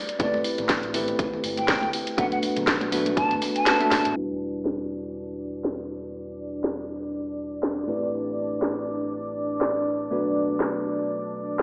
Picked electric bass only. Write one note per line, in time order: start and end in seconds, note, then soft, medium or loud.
0.20 0.28 A1 loud
0.34 0.41 A2 medium
0.58 1.12 A1 medium
1.44 1.74 G1 medium
1.82 1.89 D2 medium
2.18 2.27 B1 loud
2.32 2.39 F#1 medium
2.56 3.11 B1 medium
3.31 3.38 A1 medium
3.91 4.00 F#1 medium
4.05 4.12 A1 loud
4.16 7.86 E1 medium
7.88 10.09 A1 medium
10.11 11.62 B1 medium